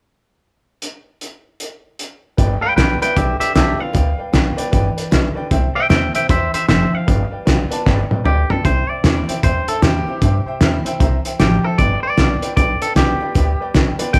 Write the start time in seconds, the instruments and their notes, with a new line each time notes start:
0.82 closed hi-hat
1.21 closed hi-hat
1.60 closed hi-hat
1.99 closed hi-hat
2.37 upright bass G1, steel-string acoustic guitar G3, upright piano B4 D5 G5, kick, closed hi-hat
2.61 clean electric guitar B4 G5, upright piano B4 D5 F5, muted upright bass stroke
2.76 upright bass B1, steel-string acoustic guitar G3 B3 F4, clean electric guitar B4 G5, upright piano B4 D5, snare, closed hi-hat
3.01 steel-string acoustic guitar B3 F4, clean electric guitar B4 G5, upright piano B4 D5 E5, muted upright bass stroke, closed hi-hat
3.16 upright bass B1, steel-string acoustic guitar D3, clean electric guitar G4 E5, upright piano B4 D5 G5, kick, closed hi-hat
3.39 clean electric guitar G4 E5, upright piano B4 D5 G5, muted upright bass stroke, closed hi-hat
3.55 upright bass B1, steel-string acoustic guitar G3 B3 F4, clean electric guitar G4 E5, upright piano B4 D5 A5, snare, closed hi-hat
3.79 steel-string acoustic guitar B3 F4, upright piano B4 D5 G5, clean electric guitar F5, muted upright bass stroke
3.93 upright bass D2, steel-string acoustic guitar G3, upright piano B4 D5 G5, kick, closed hi-hat
4.18 upright piano B4 D5 G5, muted upright bass stroke
4.32 upright bass B1, steel-string acoustic guitar G3 B3 F4, upright piano B4 D5 G5, snare, closed hi-hat
4.57 upright piano B4 D5 G5, muted upright bass stroke, closed hi-hat
4.71 upright bass G1, steel-string acoustic guitar E3, upright piano B4 D5 G5, kick, closed hi-hat
4.97 upright piano B4 D5 G5, closed hi-hat
5.11 upright bass B1, steel-string acoustic guitar D3, upright piano B4 D5 E5, snare, closed hi-hat
5.35 upright piano B4 D5 G5, muted upright bass stroke
5.51 upright bass C2, steel-string acoustic guitar C3, upright piano C5 E5 G5, kick, closed hi-hat
5.75 upright piano C5 E5 G5, clean electric guitar E5 G5, muted upright bass stroke
5.89 upright bass E2, steel-string acoustic guitar E3 A#3 C4 E4, upright piano C5 E5 G5, clean electric guitar E5 G5, snare, closed hi-hat
6.14 steel-string acoustic guitar C4 E4, upright piano C5 E5 G5, clean electric guitar E5 G5, muted upright bass stroke, closed hi-hat
6.29 upright bass E2, steel-string acoustic guitar E3, upright piano C5 E5 G5, clean electric guitar C5 E5, kick, closed hi-hat
6.53 upright piano C5 E5 G5, clean electric guitar C5 E5, muted upright bass stroke, closed hi-hat
6.68 upright bass F1, steel-string acoustic guitar F3, upright piano C5 E5 G5, clean electric guitar C5 E5, snare, closed hi-hat
6.92 upright piano C5 E5 G5, clean electric guitar F5, muted upright bass stroke
7.07 upright bass G1, steel-string acoustic guitar G3, upright piano B4 D5 G5, kick, closed hi-hat
7.31 upright piano B4 D5 G5, muted upright bass stroke
7.45 upright bass B1, steel-string acoustic guitar G3 B3 F4, upright piano B4 D5 G5, snare, closed hi-hat
7.71 steel-string acoustic guitar B3 F4, upright piano B4 D5 A5, muted upright bass stroke, closed hi-hat
7.86 upright bass G1, steel-string acoustic guitar A2, upright piano B4 D5 G5, kick, snare
8.10 upright piano B4 D5 G5, muted upright bass stroke, high tom
8.25 upright bass D2, steel-string acoustic guitar D3, clean electric guitar G4, upright piano B4 D5 G5, mid tom
8.50 clean electric guitar A4, upright piano B4 D5 G5, floor tom
8.63 upright bass C2, steel-string acoustic guitar C3, upright piano C5 E5 G5, clean electric guitar C5, kick, closed hi-hat
8.88 upright piano C5 E5 G5, clean electric guitar D5, muted upright bass stroke
9.03 upright bass E2, steel-string acoustic guitar E3 A#3 C4 E4, upright piano C5 E5 G5, snare, closed hi-hat
9.28 steel-string acoustic guitar C4 E4, upright piano C5 E5 G5, muted upright bass stroke, closed hi-hat
9.43 upright bass E2, steel-string acoustic guitar G2, upright piano C5 E5 G5, clean electric guitar C5, kick, closed hi-hat
9.67 clean electric guitar A4, upright piano C5 E5 G5, muted upright bass stroke, closed hi-hat
9.82 upright bass E2, steel-string acoustic guitar E3 A#3 C4 E4, clean electric guitar G4, upright piano C5 E5 G5, snare, closed hi-hat
10.06 steel-string acoustic guitar C4 E4, upright piano C5 E5 G5, muted upright bass stroke
10.22 upright bass G2, steel-string acoustic guitar C3, upright piano C5 E5 G5, kick, closed hi-hat
10.45 upright piano C5 E5 G5, muted upright bass stroke
10.60 upright bass E2, steel-string acoustic guitar E3 A#3 C4 E4, upright piano C5 E5 G5, snare, closed hi-hat
10.85 steel-string acoustic guitar C4 E4, upright piano C5 E5 G5, muted upright bass stroke, closed hi-hat
11.00 upright bass C2, steel-string acoustic guitar E3, upright piano C5 E5 A#5, kick, closed hi-hat
11.24 upright piano C5 E5 G5, muted upright bass stroke, closed hi-hat
11.39 upright bass A1, steel-string acoustic guitar F3, clean electric guitar G4, upright piano C5 E5 A#5, snare, closed hi-hat
11.64 clean electric guitar A4, upright piano C5 E5 G5
11.78 upright bass G1, steel-string acoustic guitar G3, upright piano B4 D5 G5, clean electric guitar D5, kick, closed hi-hat
12.03 upright piano B4 D5 G5, clean electric guitar D5, muted upright bass stroke
12.17 upright bass B1, steel-string acoustic guitar G3 B3 F4, upright piano B4 D5 G5, snare, closed hi-hat
12.42 steel-string acoustic guitar B3 F4, upright piano B4 D5 G5, muted upright bass stroke, closed hi-hat
12.56 upright bass B1, steel-string acoustic guitar D3, upright piano B4 D5 G5, clean electric guitar D5, kick, closed hi-hat
12.81 clean electric guitar A4, upright piano B4 D5 G5, closed hi-hat
12.95 upright bass B1, steel-string acoustic guitar G3 B3 F4, clean electric guitar G4, upright piano B4 D5 G5, snare, closed hi-hat
13.20 steel-string acoustic guitar B3 F4, upright piano B4 D5 G5, muted upright bass stroke
13.35 upright bass D2, steel-string acoustic guitar G3, upright piano B4 D5 G5, kick, closed hi-hat
13.59 upright piano B4 D5 G5, muted upright bass stroke
13.74 upright bass B1, steel-string acoustic guitar G3 B3 F4, upright piano B4 D5 G5, snare, closed hi-hat
13.99 steel-string acoustic guitar B3 F4, upright piano B4 D5 G5, muted upright bass stroke, closed hi-hat
14.13 upright bass G1, steel-string acoustic guitar D3, upright piano B4 D5, clean electric guitar G5, kick, closed hi-hat